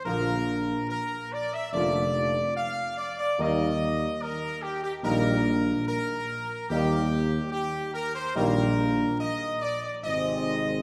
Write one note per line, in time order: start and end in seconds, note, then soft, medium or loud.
0.05 0.75 A#1 loud
0.05 0.37 D3 medium
0.05 0.37 F3 medium
0.05 0.37 A#3 loud
0.05 0.37 F4 medium
0.05 0.85 A#4 loud
0.89 1.28 A#4 loud
1.32 1.52 D5 loud
1.53 1.73 E5 loud
1.73 2.42 F1 loud
1.73 2.04 D3 loud
1.73 2.04 F3 medium
1.73 2.04 A#3 loud
1.73 2.04 F4 loud
1.73 2.52 D5 loud
2.56 2.95 F5 loud
2.98 3.17 D5 loud
3.19 3.38 D5 loud
3.39 4.07 D#2 loud
3.39 3.69 D#3 loud
3.39 3.69 G3 medium
3.39 3.69 A#3 loud
3.39 3.69 D#4 loud
3.39 4.21 D#5 loud
4.21 4.63 A#4 loud
4.62 4.82 G4 loud
4.83 4.93 G4 loud
5.03 5.73 A#1 loud
5.03 5.35 D#3 loud
5.03 5.35 G3 loud
5.03 5.35 A#3 loud
5.03 5.34 D#4 loud
5.03 5.83 A#4 loud
5.87 6.66 A#4 loud
6.70 7.39 D#2 loud
6.70 7.01 D#3 medium
6.70 7.01 G3 medium
6.70 7.01 A#3 loud
6.70 7.01 D#4 loud
6.70 7.49 G4 loud
7.52 7.91 G4 loud
7.94 8.14 A#4 loud
8.15 8.35 C5 loud
8.36 9.06 A#1 loud
8.36 8.67 D#3 loud
8.36 8.67 G3 loud
8.36 8.67 A#3 loud
8.36 8.67 D#4 loud
8.36 9.16 A#4 loud
9.20 9.59 D#5 loud
9.62 9.81 D5 loud
9.83 9.93 D5 loud
10.03 10.82 G#1 loud
10.03 10.82 C3 medium
10.03 10.82 G#3 medium
10.03 10.82 C4 loud
10.03 10.82 D#4 loud
10.03 10.82 D#5 loud